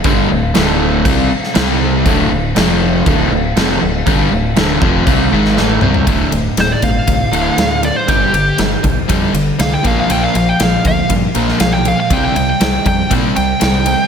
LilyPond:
<<
  \new Staff \with { instrumentName = "Lead electric guitar" } { \time 4/4 \key d \minor \tempo 4 = 119 r1 | r1 | r1 | r4 c''16 d''16 f''2 d''16 c''16 |
g'8 g'8 r2 f''16 g''16 f''16 f''16 | g''16 f''16 f''16 g''16 f''8 f''8 r4 f''16 g''16 f''16 f''16 | g''16 g''16 g''16 g''16 g''8 g''8 r8 g''4. | }
  \new Staff \with { instrumentName = "Overdriven electric guitar" } { \clef bass \time 4/4 \key d \minor <g, d g>8 <d, a,>8 <d, a, d>4 <c g c'>8 r8 <c g c'>4 | <d, a, d>8 <d, a,>8 <f, c f>4 <d, a, d>8 <d, a,>8 <f, c f>8 <d, a,>8 | <g, d g>8 <d, a,>8 <d, a, d>8 <f, c f>8 <c g c'>8 <gis, ees gis>8 <a, e a>8 <c g c'>8 | <d, a, d>8 <d, a,>8 <d, a,>8 <d, a,>8 <d, a,>8 <d, a, d>8 <d, a,>8 <d, a,>8 |
<g, d g>8 <g, d>8 <g, d>8 <g, d>8 <g, d g>8 <g, d>8 <g, d>8 <bes, f bes>8 | <bes, f bes>8 <bes, f>8 <bes, f>8 <bes, f>8 <bes, f>8 <bes, f bes>8 <bes, f>8 <bes, f>8 | <c g c'>8 <c g>8 <c g>8 <c g>8 <c g c'>8 <c g>8 <c g>8 <c g>8 | }
  \new Staff \with { instrumentName = "Overdriven electric guitar" } { \clef bass \time 4/4 \key d \minor <g, d g>8 <d, a,>8 <d, a, d>4 <c g c'>8 r8 <c g c'>4 | <d, a, d>8 <d, a,>8 <f, c f>4 <d, a, d>8 <d, a,>8 <f, c f>8 <d, a,>8 | <g, d g>8 <d, a,>8 <d, a, d>8 <f, c f>8 <c g c'>8 <gis, ees gis>8 <a, e a>8 <c g c'>8 | <d, a, d>8 <d, a,>8 <d, a,>8 <d, a,>8 <d, a,>8 <d, a, d>8 <d, a,>8 <d, a,>8 |
<g, d g>8 <g, d>8 <g, d>8 <g, d>8 <g, d g>8 <g, d>8 <g, d>8 <bes, f bes>8 | <bes, f bes>8 <bes, f>8 <bes, f>8 <bes, f>8 <bes, f>8 <bes, f bes>8 <bes, f>8 <bes, f>8 | <c g c'>8 <c g>8 <c g>8 <c g>8 <c g c'>8 <c g>8 <c g>8 <c g>8 | }
  \new Staff \with { instrumentName = "Fingered electric bass" } { \clef bass \time 4/4 \key d \minor g,,8 d,,8 d,,4 c,8 r8 c,4 | d,,8 d,,8 f,,4 d,,8 d,,8 f,,8 d,,8 | g,,8 d,,8 d,,8 f,,8 c,8 gis,,8 a,,8 c,8 | d,,8 d,,8 d,,8 g,,8 c,8 d,,8 d,4 |
g,,8 g,,8 g,,8 c,8 f,8 g,,8 c,8 bes,,8 | bes,,8 bes,,8 bes,,8 d,8 g,8 bes,,8 b,,4 | c,8 c,8 c,8 f,8 bes,8 c,8 c,4 | }
  \new DrumStaff \with { instrumentName = "Drums" } \drummode { \time 4/4 <cymc bd>4 <cymc sn>4 <cymc bd>8. sn16 <cymc sn>4 | <cymc bd>4 <cymc sn>4 <cymc bd>4 <cymc sn>4 | <cymc bd>4 <cymc sn>8 bd8 <cymc bd>8. sn16 sn8 toml16 tomfh16 | <bd cymr>8 cymr8 <cymr sn>8 <bd cymr>8 <bd cymr>8 cymr8 <cymr sn>8 cymr8 |
<bd cymr>8 cymr8 <cymr sn>8 <bd cymr>8 <bd cymr>8 cymr8 <cymr sn>8 <bd cymr>8 | cymr8 cymr8 <cymr sn>8 <bd cymr>8 <bd cymr>8 cymr16 sn16 <cymr sn>8 cymr8 | <bd cymr>8 cymr8 <cymr sn>8 <bd cymr>8 <bd cymr>8 cymr8 <cymr sn>8 cymr8 | }
>>